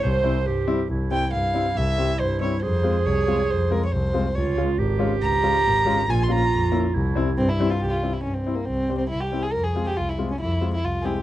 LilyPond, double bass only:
\new Staff \with { instrumentName = "Double bass" } { \clef bass \time 2/4 \tempo 4 = 139 c,4 g,4 | c,4 g,4 | c,4 g,4 | f,4 c,4 |
f,4 c,4 | des,4 aes,,4 | des,4 aes,,4 | bes,,4 f,4 |
c,4 g,4 | c,4 g,4 | c,4 c,4 | f,4 c,4 |
f,4 c,4 | }